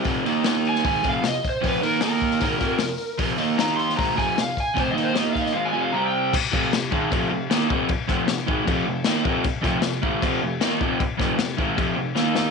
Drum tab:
CC |----------------|----------------|----------------|----------------|
HH |o-o-o-o-o-o-o-o-|o-o-o-o-o-o-o-o-|o-o-o-o-o-o-o-o-|o-o-o-o---------|
SD |----o--o----o---|----o--o----o---|----o--o----o---|----o--o--------|
BD |o-------o-o---o-|o-----o-o-o-----|o-------o-o---o-|o-----o---------|

CC |x---x---x---x---|x---x---x---x---|x---x---x---x---|x---x---x-------|
HH |----------------|----------------|----------------|----------------|
SD |----o-------o---|--o-o-------o---|--o-o-------o---|--o-o-------o-o-|
BD |o-o---o-o-----o-|o-o---o-o-----o-|o-o---o-o-----o-|o-o---o-o-------|